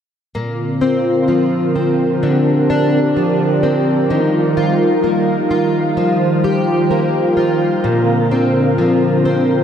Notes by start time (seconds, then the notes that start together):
0.35 A#2 D3 C4 F4 A#4
0.81 C4
1.28 F3
1.75 C4
2.22 D3 G4
2.70 D4
3.17 F3
3.63 C4
4.09 D#3 G3 F4
4.57 F4
5.04 A#3
5.51 F4
5.97 F3 C5
6.44 G4
6.91 A#3
7.37 F4
7.84 A#2 D3 C4 A#4
8.31 C4
8.78 F3
9.25 C4